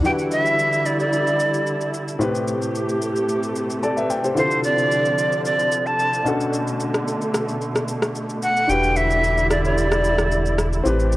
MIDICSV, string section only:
0, 0, Header, 1, 2, 480
1, 0, Start_track
1, 0, Key_signature, 1, "minor"
1, 0, Tempo, 540541
1, 41, Time_signature, 4, 2, 24, 8
1, 9918, End_track
2, 0, Start_track
2, 0, Title_t, "String section"
2, 0, Program_c, 0, 48
2, 41, Note_on_c, 0, 50, 74
2, 41, Note_on_c, 0, 55, 67
2, 41, Note_on_c, 0, 64, 82
2, 1942, Note_off_c, 0, 50, 0
2, 1942, Note_off_c, 0, 55, 0
2, 1942, Note_off_c, 0, 64, 0
2, 1959, Note_on_c, 0, 48, 74
2, 1960, Note_on_c, 0, 57, 69
2, 1960, Note_on_c, 0, 67, 81
2, 3861, Note_off_c, 0, 57, 0
2, 3861, Note_off_c, 0, 67, 0
2, 3881, Note_on_c, 0, 50, 82
2, 3881, Note_on_c, 0, 53, 67
2, 5525, Note_off_c, 0, 48, 0
2, 5544, Note_off_c, 0, 53, 0
2, 5560, Note_on_c, 0, 47, 75
2, 5560, Note_on_c, 0, 57, 70
2, 7685, Note_off_c, 0, 50, 0
2, 7699, Note_off_c, 0, 47, 0
2, 7699, Note_off_c, 0, 57, 0
2, 7720, Note_on_c, 0, 50, 73
2, 7721, Note_on_c, 0, 55, 69
2, 7721, Note_on_c, 0, 64, 84
2, 9621, Note_off_c, 0, 50, 0
2, 9622, Note_off_c, 0, 55, 0
2, 9622, Note_off_c, 0, 64, 0
2, 9639, Note_on_c, 0, 57, 68
2, 9640, Note_on_c, 0, 48, 72
2, 9640, Note_on_c, 0, 67, 85
2, 9918, Note_off_c, 0, 48, 0
2, 9918, Note_off_c, 0, 57, 0
2, 9918, Note_off_c, 0, 67, 0
2, 9918, End_track
0, 0, End_of_file